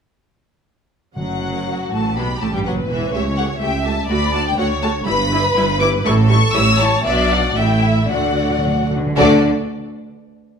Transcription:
1.16 double bass section F#1, cello section F#2, timpani D3, viola section F#3, violin section F#5
1.68 violin section F#4
1.92 double bass section A1, cello section A2, viola section A3, violin section A5
2.17 double bass section B1, cello section B2, viola section B3, violin section G4 B5
2.41 double bass section A1, cello section A2, viola section A3, violin section A5
2.53 cello section G2, viola section G3, violin section G5
2.65 double bass section F#1, cello section F#2, viola section F#3, violin section B4 F#5
2.89 double bass section E1, cello section E2, viola section E3, violin section E5
3.12 cello section C#2, double bass section C#2, viola section A3 G4, violin section C#5 E5
3.37 viola section A3 G4, violin section F#5
3.61 cello section C#2, double bass section C#2, viola section A3 G4, violin section E5 G5
3.85 viola section A3 G4, violin section A5
4.10 cello section D2, double bass section D2, viola section A3 F#4, violin section D5 B5
4.33 viola section A3 F#4, violin section A5
4.48 violin section G5
4.58 cello section D2, double bass section D2, viola section A3 F#4, violin section C#5 F#5
4.82 viola section A3 F#4, violin section A5
5.06 double bass section G1, cello section G2, viola section G3 E4, violin section B4 B5
5.31 viola section G3 E4
5.56 double bass section G1, cello section G2, viola section G3 E4
5.81 viola section G3 E4, violin section D6
6.05 double bass section A1, cello section A2, viola section G3 E4, violin section A4 C#6
6.30 viola section G3 E4, violin section C#6
6.55 double bass section A1, cello section A2, viola section G3 E4, violin section C#5 E6
6.79 viola section G3 E4, violin section A5
7.05 double bass section B1, cello section B2, viola section F#3 D4, violin section D5 E5
7.30 violin section F#5
7.56 double bass section A1, cello section A2, viola section A3 E4, violin section E5 G5
7.83 violin section E5
8.09 double bass section D2, cello section D3, timpani D3, viola section A3 F#4, violin section D5 F#5
8.18 timpani D3
8.26 timpani D3
8.34 timpani D3
8.42 timpani D3
8.50 timpani D3
8.58 timpani D3
8.63 timpani D3, cello section F#3
8.74 timpani D3
8.82 timpani D3
8.90 cello section D3, timpani D3
8.98 timpani D3
9.07 timpani D3
9.17 double bass section D2, timpani D3, cello section D3, viola section A3 D4, violin section F#4 A4 D5

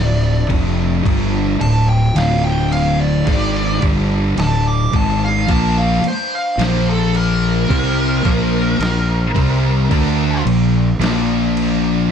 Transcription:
Already playing: fingered electric bass D1, distorted electric guitar D2 A2, synth drone F3 D4 E5, lead electric guitar D5
0.49 fingered electric bass F1, distorted electric guitar F2 C3 F3, kick, crash
1.03 fingered electric bass G1, distorted electric guitar G2 D3 G3, kick, crash
1.59 fingered electric bass D1, distorted electric guitar D2 A2, lead electric guitar A5, crash
1.89 lead electric guitar G5
2.15 fingered electric bass D1, distorted electric guitar D2 A2 D3, lead electric guitar F5, snare, crash
2.44 lead electric guitar G5
2.72 lead electric guitar F5, crash
3.01 lead electric guitar D5
3.25 fingered electric bass G#1, distorted electric guitar G#2 D#3 G#3, kick, crash
3.29 lead electric guitar D5
3.80 fingered electric bass G1, distorted electric guitar G2 D3 G3, kick, crash
4.36 fingered electric bass D1, distorted electric guitar D2 A2, lead electric guitar A5, snare, crash
4.68 lead electric guitar D6
4.92 fingered electric bass G#1, distorted electric guitar G#2 D#3 G#3, lead electric guitar A5, kick, crash
5.25 lead electric guitar F5
5.48 fingered electric bass A#1, distorted electric guitar A#2 F3 A#3, synth drone C5, lead electric guitar A5, kick, crash
5.78 lead electric guitar F5
6.03 muted fingered electric bass stroke, muted distorted electric guitar stroke, crash
6.08 lead electric guitar C5
6.35 lead electric guitar F5
6.58 fingered electric bass A#1, distorted electric guitar A#2 F3 A#3, snare, crash
6.64 lead electric guitar C5
6.90 lead electric guitar A4
7.15 lead electric guitar A#4, crash
7.69 fingered electric bass C2, distorted electric guitar C3 G3 C4, kick, crash
8.25 fingered electric bass A#1, distorted electric guitar A#2 F3 A#3, kick, crash
8.79 fingered electric bass A#1, distorted electric guitar A#2 F3, snare, crash
9.34 fingered electric bass C2, distorted electric guitar C3 G3 C4, kick, crash
9.90 fingered electric bass D2, distorted electric guitar D3 A3 D4, synth drone D5, kick, crash
10.44 fingered electric bass A#1, distorted electric guitar A#2 F3, crash
10.99 fingered electric bass A#1, distorted electric guitar A#2 F3 A#3, crash
11.04 snare
11.57 crash

